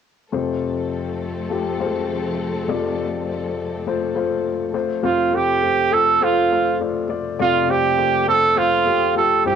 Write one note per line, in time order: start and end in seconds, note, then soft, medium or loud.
0.31 2.64 F2 medium
0.31 2.64 C3 medium
0.31 4.99 F3 medium
0.31 4.99 A3 medium
0.31 1.24 A3 medium
0.31 4.99 C4 soft
0.31 1.24 F4 medium
0.31 4.99 A4 medium
0.31 1.25 C5 medium
1.50 1.73 A3 medium
1.50 1.73 F4 soft
1.50 1.74 G4 medium
1.80 1.86 G#3 soft
1.80 2.49 F4 medium
1.80 2.49 C5 medium
1.86 2.52 A3 medium
2.68 4.70 F2 medium
2.68 4.70 C3 medium
2.68 3.60 A3 medium
2.68 3.60 F4 medium
2.68 3.60 D5 medium
3.87 4.09 A3 medium
3.87 4.09 F4 medium
3.87 4.10 C5 medium
4.15 4.72 A3 medium
4.15 4.73 F4 medium
4.15 4.73 C5 medium
4.74 4.97 A3 medium
4.74 4.98 F4 medium
4.74 4.98 C5 medium
5.03 7.34 F2 medium
5.03 7.35 C3 medium
5.03 5.26 A3 medium
5.03 5.26 F4 medium
5.03 5.37 F4 medium
5.03 5.27 C5 medium
5.32 5.55 A3 medium
5.32 5.56 F4 medium
5.32 5.95 G4 medium
5.32 5.56 A4 medium
5.62 5.85 A3 medium
5.62 5.86 F4 soft
5.62 5.86 C5 medium
5.91 6.14 A3 medium
5.91 6.14 F4 medium
5.91 6.15 A4 medium
5.91 6.25 A4 medium
6.21 6.44 A3 medium
6.21 6.44 F4 medium
6.21 6.81 F4 medium
6.21 6.44 C5 medium
6.52 6.74 A3 medium
6.52 6.74 F4 medium
6.52 6.74 C5 medium
6.80 7.03 A3 medium
6.80 7.03 F4 medium
6.80 7.03 D5 medium
7.09 7.32 A3 medium
7.09 7.32 F4 medium
7.09 7.32 D5 medium
7.39 9.40 F2 medium
7.39 9.41 C3 medium
7.39 7.62 A3 medium
7.39 7.62 F4 medium
7.39 7.72 F4 medium
7.39 7.62 D5 medium
7.69 7.91 A3 medium
7.69 7.91 F4 medium
7.69 8.28 G4 medium
7.69 7.92 C5 medium
7.97 8.20 A3 medium
7.97 8.20 F4 medium
7.97 8.21 C5 medium
8.27 8.50 A3 medium
8.27 8.50 F4 medium
8.27 8.59 A4 medium
8.27 8.50 C5 medium
8.56 8.79 A3 medium
8.56 8.79 F4 medium
8.56 9.16 F4 medium
8.56 8.79 C5 medium
8.86 9.09 A3 medium
8.86 9.09 F4 medium
8.86 9.09 G4 medium
9.15 9.38 A3 medium
9.15 9.38 F4 soft
9.15 9.38 G4 medium
9.15 9.43 A4 medium
9.45 9.55 C2 soft
9.45 9.55 G2 medium
9.45 9.55 G3 medium
9.45 9.55 E4 medium
9.45 9.55 G4 medium
9.45 9.55 C5 medium